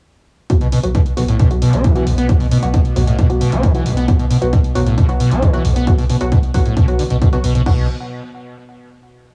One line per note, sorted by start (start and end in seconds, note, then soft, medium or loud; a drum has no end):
0.50 7.71 B2 medium
0.50 0.59 F#3 medium
0.50 0.59 B3 medium
0.50 0.59 F#4 medium
0.50 kick loud
0.50 closed hi-hat medium
0.61 0.72 B1 medium
0.61 0.67 B2 medium
0.61 closed hi-hat medium
0.72 0.79 B2 loud
0.72 open hi-hat loud
0.83 0.95 B1 medium
0.83 0.97 F#3 medium
0.83 0.97 B3 medium
0.83 0.97 F#4 loud
0.83 closed hi-hat medium
0.95 1.01 B2 loud
0.95 kick loud
0.95 closed hi-hat medium
1.06 closed hi-hat medium
1.17 1.28 B1 medium
1.17 1.23 B1 loud
1.17 1.26 F#3 loud
1.17 1.26 B3 medium
1.17 1.26 F#4 loud
1.17 open hi-hat loud
1.28 1.39 B1 medium
1.28 1.38 A2 medium
1.28 closed hi-hat medium
1.39 1.49 B2 loud
1.39 kick loud
1.39 closed hi-hat medium
1.51 1.62 B1 medium
1.51 1.64 F#3 medium
1.51 1.64 B3 medium
1.51 1.64 F#4 medium
1.51 closed hi-hat medium
1.62 1.75 B2 loud
1.62 open hi-hat loud
1.73 1.84 B1 medium
1.73 1.86 D4 medium
1.73 closed hi-hat medium
1.84 1.94 D3 medium
1.84 kick loud
1.84 closed hi-hat medium
1.95 2.05 E3 medium
1.95 2.04 F#3 medium
1.95 2.04 B3 medium
1.95 2.04 F#4 medium
1.95 closed hi-hat medium
2.07 2.13 B1 loud
2.07 2.17 B1 loud
2.07 open hi-hat loud
2.18 2.29 B1 medium
2.18 2.27 B3 medium
2.18 closed hi-hat medium
2.29 2.38 F#3 medium
2.29 2.38 B3 medium
2.29 2.38 F#4 medium
2.29 kick loud
2.29 closed hi-hat medium
2.40 2.51 B1 medium
2.40 2.46 B2 medium
2.40 open hi-hat medium
2.51 2.58 B2 loud
2.51 open hi-hat loud
2.63 2.74 B1 medium
2.63 2.76 F#3 medium
2.63 2.76 B3 medium
2.63 2.76 F#4 medium
2.63 closed hi-hat medium
2.74 2.80 B2 loud
2.74 kick loud
2.74 closed hi-hat medium
2.85 closed hi-hat medium
2.96 3.02 B1 loud
2.96 3.07 B1 medium
2.96 3.05 F#3 medium
2.96 3.05 B3 medium
2.96 3.05 F#4 loud
2.96 open hi-hat loud
3.07 3.19 B1 medium
3.07 3.17 A2 medium
3.07 closed hi-hat medium
3.18 3.28 B2 loud
3.18 kick loud
3.18 closed hi-hat medium
3.30 3.41 B1 medium
3.30 3.43 F#3 medium
3.30 3.43 B3 medium
3.30 3.43 F#4 medium
3.30 closed hi-hat medium
3.41 3.53 B2 loud
3.41 open hi-hat loud
3.52 3.63 B1 medium
3.52 3.65 D4 medium
3.52 closed hi-hat medium
3.63 3.73 D3 medium
3.63 kick loud
3.63 closed hi-hat medium
3.75 3.84 E3 medium
3.75 3.83 F#3 medium
3.75 3.83 B3 medium
3.75 3.83 F#4 medium
3.75 closed hi-hat medium
3.86 3.92 B1 loud
3.86 3.96 B1 medium
3.86 open hi-hat loud
3.97 4.08 B1 medium
3.97 4.06 B3 medium
3.97 closed hi-hat medium
4.08 4.17 F#3 medium
4.08 4.17 B3 medium
4.08 4.17 F#4 medium
4.08 kick loud
4.08 closed hi-hat medium
4.19 4.30 B1 medium
4.19 4.26 B2 medium
4.19 closed hi-hat medium
4.31 4.37 B2 loud
4.31 open hi-hat loud
4.42 4.53 B1 medium
4.42 4.55 F#3 medium
4.42 4.55 B3 medium
4.42 4.55 F#4 loud
4.42 closed hi-hat medium
4.53 4.59 B2 loud
4.53 kick loud
4.53 closed hi-hat medium
4.64 closed hi-hat medium
4.75 4.81 B1 loud
4.75 4.86 B1 medium
4.75 4.84 F#3 loud
4.75 4.84 B3 medium
4.75 4.84 F#4 loud
4.75 open hi-hat loud
4.87 4.98 B1 medium
4.87 4.96 A2 medium
4.87 closed hi-hat medium
4.98 5.07 B2 loud
4.98 kick loud
4.98 closed hi-hat medium
5.09 5.20 B1 medium
5.09 5.23 F#3 medium
5.09 5.23 B3 medium
5.09 5.23 F#4 medium
5.09 closed hi-hat medium
5.20 5.33 B2 loud
5.20 open hi-hat loud
5.31 5.42 B1 medium
5.31 5.44 D4 medium
5.31 closed hi-hat medium
5.42 5.52 D3 medium
5.42 kick loud
5.42 closed hi-hat medium
5.53 5.63 E3 medium
5.53 5.62 F#3 medium
5.53 5.62 B3 medium
5.53 5.62 F#4 loud
5.53 closed hi-hat medium
5.65 5.71 B1 loud
5.65 5.76 B1 loud
5.65 open hi-hat loud
5.76 5.87 B1 medium
5.76 5.85 B3 medium
5.76 closed hi-hat medium
5.87 5.96 F#3 medium
5.87 5.96 B3 medium
5.87 5.96 F#4 medium
5.87 kick loud
5.87 closed hi-hat medium
5.98 6.10 B1 medium
5.98 6.05 B2 medium
5.98 open hi-hat medium
6.10 6.16 B2 loud
6.10 open hi-hat loud
6.21 6.32 B1 medium
6.21 6.35 F#3 medium
6.21 6.35 B3 medium
6.21 6.35 F#4 loud
6.21 closed hi-hat medium
6.32 6.38 B2 loud
6.32 kick loud
6.32 closed hi-hat medium
6.43 closed hi-hat soft
6.54 6.61 B1 loud
6.54 6.65 B1 medium
6.54 6.63 F#3 loud
6.54 6.63 B3 medium
6.54 6.63 F#4 loud
6.54 kick medium
6.54 open hi-hat loud
6.66 6.77 B1 medium
6.66 6.75 A2 medium
6.66 closed hi-hat medium
6.77 6.86 B2 loud
6.77 kick loud
6.77 closed hi-hat medium
6.88 6.99 B1 medium
6.88 7.02 F#3 medium
6.88 7.02 B3 medium
6.88 7.02 F#4 medium
6.88 closed hi-hat medium
6.99 7.03 D3 medium
6.99 open hi-hat loud
7.10 7.21 B1 medium
7.10 7.17 B2 medium
7.10 closed hi-hat soft
7.22 7.28 B2 medium
7.22 kick loud
7.22 closed hi-hat medium
7.33 7.37 B2 medium
7.33 7.41 F#3 medium
7.33 7.41 B3 medium
7.33 7.41 F#4 loud
7.33 closed hi-hat medium
7.44 7.55 B1 loud
7.44 7.53 B2 medium
7.44 open hi-hat loud
7.55 7.66 B1 medium
7.55 7.61 B2 loud
7.55 closed hi-hat medium
7.66 7.87 B1 loud
7.66 7.87 B2 medium
7.66 7.83 F#3 medium
7.66 7.83 B3 medium
7.66 7.83 F#4 medium
7.66 kick loud
7.66 crash medium